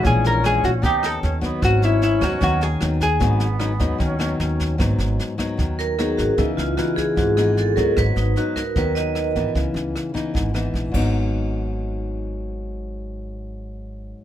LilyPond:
<<
  \new Staff \with { instrumentName = "Vibraphone" } { \time 4/4 \key gis \minor \tempo 4 = 151 r1 | r1 | r1 | r2 r8 ais'8 gis'8 fis'8 |
e'8 eis'8 fis'8 gis'8 fis'8 gis'8 a'8 ais'8 | b'8 dis'8 fis'8 ais'8 b'8 dis''8 r4 | r1 | r1 |
r1 | }
  \new Staff \with { instrumentName = "Hollow-body jazz guitar" } { \time 4/4 \key gis \minor gis'8 ais'8 gis'8 fis'8 g'8 a'4 r8 | fis'8 e'8 e'8 fis'8 fis'8 gis'4 gis'8~ | gis'2.~ gis'8 r8 | r1 |
r1 | r1 | r1 | r1 |
r1 | }
  \new Staff \with { instrumentName = "Alto flute" } { \time 4/4 \key gis \minor cis'2 dis'4 cis'8 b8 | cis'2.~ cis'8 r8 | b2 cis'4 cis'4 | r1 |
r1 | r1 | r1 | r1 |
r1 | }
  \new Staff \with { instrumentName = "Nylon-string guitar" } { \time 4/4 \key gis \minor << { <e gis cis'>4 <e gis cis'>8 r8 <b cis' g'>4. <fis b dis'>8~ | <fis b dis'>4 r8 <fis b dis'>8 <fis b dis'>8 r8 <fis b dis'>8 r8 | <fis b dis'>8 r8 <fis b dis'>8 <fis b dis'>4 <fis b dis'>4. | <fis b dis'>4. <fis b dis'>4. <fis b dis'>4 |
<e b dis'>4 <e b dis'>4. <e b dis'>4 <fis b dis'>8~ | <fis b dis'>4 <fis b dis'>8 r8 <fis b dis'>4. <e b dis'>8~ | <e b dis'>4. <e b dis'>4 <e b dis'>4 <gis, fis b dis'>8~ | <gis, fis b dis'>1~ |
<gis, fis b dis'>1 | } \\ { ais,2 dis2 | gis,2 dis2 | gis,2 dis2 | gis,2 dis2 |
cis2 gis,2 | gis,2 dis2 | cis2 gis,4. r8 | r1 |
r1 | } >> }
  \new Staff \with { instrumentName = "Upright bass" } { \clef bass \time 4/4 \key gis \minor ais,,4. ais,,8 dis,4 dis,4 | gis,,4. dis,8 dis,4 dis,4 | gis,,4. dis,8 dis,4 dis,4 | gis,,8 gis,,8 r4 dis,4. gis,,16 r16 |
cis,8 cis,8 r4 gis,,4. cis,16 r16 | gis,,8 gis,,8 r4 dis,4. gis,,16 r16 | cis,8 cis,8 r4 gis,,4 ais,,8 gis,,8~ | gis,,1~ |
gis,,1 | }
  \new DrumStaff \with { instrumentName = "Drums" } \drummode { \time 4/4 <bd sn>8 sn8 <ss sn>8 <bd sn>8 <bd sn>8 <ss sn>8 sn8 <bd sn>8 | <bd ss sn>8 sn8 sn8 <bd ss sn>8 <bd sn>8 sn8 <ss sn>8 <bd sn>8 | <bd sn>8 sn8 <ss sn>8 <bd sn>8 <bd sn>8 <ss sn>8 sn8 <bd sn>8 | <bd ss sn>8 sn8 sn8 <bd ss sn>8 <bd sn>8 sn8 <ss sn>8 <bd sn>8 |
<bd sn>8 sn8 <ss sn>8 <bd sn>8 <bd sn>8 <ss sn>8 sn8 <bd sn>8 | <bd ss sn>8 sn8 sn8 <bd ss sn>8 <bd sn>8 sn8 <ss sn>8 <bd sn>8 | <bd sn>8 sn8 <ss sn>8 <bd sn>8 <bd sn>8 <ss sn>8 sn8 <cymc bd>8 | r4 r4 r4 r4 |
r4 r4 r4 r4 | }
>>